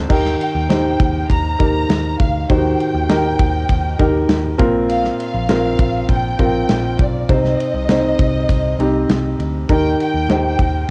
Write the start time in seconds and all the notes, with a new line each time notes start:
Already playing: C4 D4 A#4 C5
0.09 D#2 D#3 D#4 G4 A#4 G5, kick, crash
0.25 snare
0.41 G5, ride
0.55 D#2
0.69 D#2 D#4 G4 C5, snare, ride
1.00 D#2, kick, ride
1.30 D#2 A#5, kick, ride
1.59 D#2 D#4 G4 A#4, kick, ride
1.89 D#2, snare, ride
2.19 D2 F5, kick, ride
2.49 D#2 D#3 D#4 F#4 C5 G5, kick, ride
2.56 G4
2.80 ride
2.94 D#2
3.09 D#2 D#4 G4 A#4, snare, ride
3.39 D#2, kick, ride
3.69 D#2, kick, ride
3.99 D#2 D#4 G4 A#4, kick, ride
4.29 D#2, snare, ride
4.58 A#1 A#2 C4 F4 A#4, kick, ride
4.90 F5, ride
5.04 snare
5.20 F5, ride
5.34 A#1
5.49 A#1 C4 F4 A#4, snare, ride
5.79 A#1, kick, ride
6.09 A#1 G5, kick, ride
6.39 A#1 C4 F4 A#4, kick, ride
6.69 A#1, snare, ride
6.99 B1 D5, kick, ride
7.29 C2 C3 C4 D#4 C5 D#5, kick, ride
7.44 snare
7.60 ride
7.74 C2
7.89 C2 C4 D#4 C5, snare, ride
8.19 C2, kick, ride
8.49 C2, kick, ride
8.79 C2 C4 D#4 G4, ride
9.09 C2, snare, ride
9.39 D2, ride
9.69 D#2 D#3 D#4 G4 A#4 G5, kick, ride
10.00 G5, ride
10.14 D#2
10.29 D#2 D#4 G4 C5, snare, ride
10.59 D#2, kick, ride